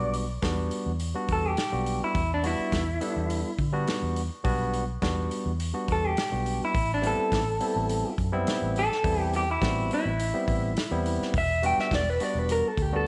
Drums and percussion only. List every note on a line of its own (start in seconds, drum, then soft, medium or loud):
0.13 open hi-hat medium
0.42 kick medium
0.42 snare loud
0.42 open hi-hat medium
0.71 open hi-hat soft
1.00 open hi-hat medium
1.28 kick medium
1.28 open hi-hat soft
1.57 snare loud
1.57 open hi-hat medium
1.86 open hi-hat medium
2.15 kick loud
2.15 open hi-hat medium
2.44 open hi-hat soft
2.72 kick medium
2.72 snare loud
2.72 open hi-hat medium
3.01 open hi-hat medium
3.30 open hi-hat medium
3.59 kick medium
3.59 open hi-hat soft
3.87 snare loud
3.87 open hi-hat medium
4.16 open hi-hat soft
4.44 kick loud
4.44 open hi-hat medium
4.73 open hi-hat soft
5.02 kick medium
5.02 snare loud
5.02 open hi-hat medium
5.31 open hi-hat medium
5.60 open hi-hat medium
5.88 kick medium
5.88 open hi-hat medium
6.17 snare loud
6.17 open hi-hat medium
6.46 open hi-hat medium
6.75 kick loud
6.75 open hi-hat medium
7.03 open hi-hat soft
7.32 kick medium
7.32 snare loud
7.32 open hi-hat medium
7.60 open hi-hat soft
7.89 open hi-hat medium
8.18 kick medium
8.18 open hi-hat soft
8.47 snare loud
8.47 open hi-hat medium
8.76 open hi-hat soft
8.92 snare soft
9.04 kick loud
9.04 open hi-hat medium
9.33 open hi-hat soft
9.62 kick medium
9.62 snare loud
9.62 open hi-hat medium
9.91 open hi-hat soft
10.19 open hi-hat medium
10.48 kick medium
10.48 open hi-hat medium
10.77 snare loud
10.77 open hi-hat medium
11.06 open hi-hat medium
11.22 snare soft
11.34 kick loud
11.34 open hi-hat medium
11.63 open hi-hat medium
11.79 snare soft
11.91 kick medium
11.91 snare loud
11.91 open hi-hat medium
12.20 open hi-hat medium
12.49 open hi-hat medium
12.77 kick medium
12.77 open hi-hat medium